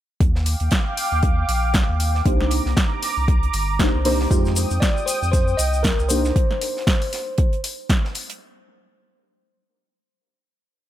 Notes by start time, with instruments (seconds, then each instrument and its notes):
0.20 sub bass D#2, analog synth pad F5 G5 D6, kick, closed hi-hat
0.36 snare
0.46 closed hi-hat, open hi-hat
0.60 sub bass D#2, closed hi-hat
0.71 kick, snare, closed hi-hat
0.97 closed hi-hat, open hi-hat
1.12 sub bass D#2
1.23 kick, closed hi-hat
1.49 sub bass A#1, closed hi-hat, open hi-hat
1.74 kick, snare, closed hi-hat
1.89 sub bass D#2
2.00 closed hi-hat, open hi-hat
2.15 snare
2.25 sub bass C2, synth stab A#3 D4 D#4 G4 C5, analog synth pad A#5 D6, kick, closed hi-hat
2.41 snare
2.51 closed hi-hat, open hi-hat
2.66 sub bass C2, snare
2.77 kick, snare, closed hi-hat
3.03 snare, closed hi-hat, open hi-hat
3.17 sub bass C2
3.28 kick, closed hi-hat
3.43 closed hi-hat
3.53 sub bass G1, closed hi-hat, open hi-hat
3.79 synth stab A#3 D4 D#4 G4 C5, kick, snare, closed hi-hat
3.94 sub bass C2
4.05 synth stab A#3 D4 D#4 G4 C5, open hi-hat
4.20 snare
4.31 sub bass F2, synth stab G#3 D#4 F4 G4 C5, analog synth pad G5 D#6, kick, closed hi-hat, shaker
4.45 snare, shaker
4.56 closed hi-hat, open hi-hat, shaker
4.70 sub bass F2, closed hi-hat, shaker
4.80 tine electric piano D5, kick, snare, closed hi-hat, shaker
4.97 shaker
5.06 tine electric piano C5, closed hi-hat, open hi-hat, shaker
5.22 sub bass F2, shaker
5.32 tine electric piano C5, kick, closed hi-hat, shaker
5.48 shaker
5.57 sub bass C2, tine electric piano D#5, closed hi-hat, open hi-hat, shaker
5.73 shaker
5.83 tine electric piano A#4, kick, snare, closed hi-hat, shaker
5.99 sub bass C2, shaker
6.09 synth stab A#3 D4 D#4 G4 A#4, tine electric piano C5, closed hi-hat, open hi-hat, shaker
6.24 snare, shaker
6.36 kick, closed hi-hat
6.51 snare
6.61 closed hi-hat, open hi-hat
6.77 snare
6.87 kick, snare, closed hi-hat
7.02 open hi-hat
7.13 snare, closed hi-hat, open hi-hat
7.38 kick, closed hi-hat
7.53 closed hi-hat
7.64 closed hi-hat, open hi-hat
7.89 kick, snare, closed hi-hat
8.05 snare
8.15 closed hi-hat, open hi-hat
8.30 closed hi-hat